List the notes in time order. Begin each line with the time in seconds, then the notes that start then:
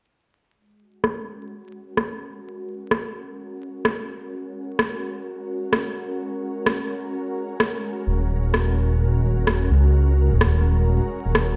0.57 G#3
0.80 F#4
0.87 C#4
1.04 cross-stick
1.71 A#4
1.97 cross-stick
2.91 cross-stick
3.85 cross-stick
4.79 cross-stick
5.73 cross-stick
6.66 cross-stick
7.60 cross-stick
8.07 D#1
8.54 cross-stick
9.47 cross-stick
9.71 C#2
10.32 D#1
10.41 cross-stick
11.26 D#1
11.35 cross-stick